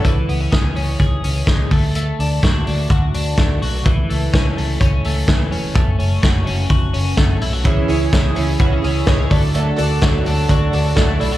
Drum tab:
HH |xoxoxoxo|xoxoxoxo|xoxoxoxo|xoxoxoxo|
SD |--o---o-|--o---o-|--o---o-|--o---o-|
BD |o-o-o-oo|--o-o-o-|o-o-o-o-|o-o-o-o-|

HH |xoxoxoxo|xoxoxoxo|
SD |--o---o-|--o---o-|
BD |o-o-o-oo|--o-o-o-|